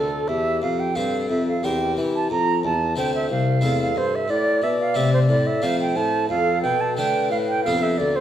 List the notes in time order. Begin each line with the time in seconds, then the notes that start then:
Already playing: D2 F4 A4
0.28 E2 G4 E5
0.62 F2 F5
0.80 G5
0.95 G2 C4 G4 A4 F5
1.30 F2 E5
1.48 F5
1.63 E2 C4 G4 A#4 G5
1.97 E3
2.16 A5
2.30 F2 F4 A#5
2.63 E2 A5
2.96 D2 A3 C4 A4 C5 G5
3.15 E5
3.29 C2 F5
3.61 E2 A3 C4 A4
3.95 G2 C5
4.15 E5
4.28 A2 D5
4.62 B2 E5
4.81 F5
4.94 C3 A3 C4 A4 E5
5.14 C5
5.29 A2 D5
5.47 E5
5.62 F2 A3 C4 A4 D5 F5
5.66 C5
5.81 G5
5.96 A2 A5
6.29 F2 A4 F5
6.63 B2 G5
6.81 A5
6.97 D3 A3 D4 A4 B4 G5
7.31 A2 F5
7.49 G5
7.64 F2 B3 D4 G4 A4 F5
7.83 E5
7.98 D2 D5
8.16 C5